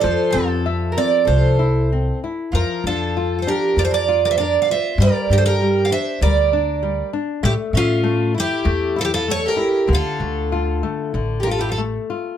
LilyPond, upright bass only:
\new Staff \with { instrumentName = "Upright bass" } { \clef bass \time 4/4 \key f \major \tempo 4 = 97 f,16 r16 f,4. c,2 | f,16 r16 f,4. f,2 | g,16 r16 g,4. d,2 | a,16 r16 a,4. e,2 |
d,16 r16 d,4. a,,2 | }